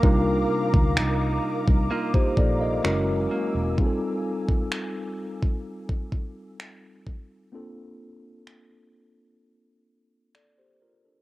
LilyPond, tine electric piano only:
\new Staff \with { instrumentName = "Tine electric piano" } { \time 4/4 \key f \mixolydian \tempo 4 = 64 << { r2 r16 <g' c''>16 <a' d''>16 <bes' ees''>8 r8. | r1 | r2. <a' d''>16 <g' c''>16 <f' bes'>16 <d' a'>16 | } \\ { <g d' ees' f' bes'>4. r4. <gis cis' e' fis' ais'>4 | <g c' ees' f' aes' a'>1 | <bes c' d' f' a'>1 | } >> }